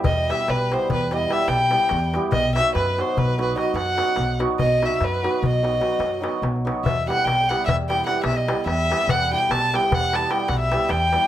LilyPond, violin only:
\new Staff \with { instrumentName = "Violin" } { \time 11/8 \key e \minor \tempo 4 = 146 dis''8 e''8 b'8 c''8 b'8 dis''8 e''8 g''4. r8 | dis''8 e''8 b'8 c''8 b'8 b'8 dis''8 fis''4. r8 | dis''8 e''8 b'4 dis''2~ dis''8 r4 | e''8 fis''8 g''8 fis''8 e''8 g''8 fis''8 e''16 dis''8. e''4 |
fis''8 g''8 a''8 g''8 fis''8 a''8 g''8 fis''16 e''8. g''4 | }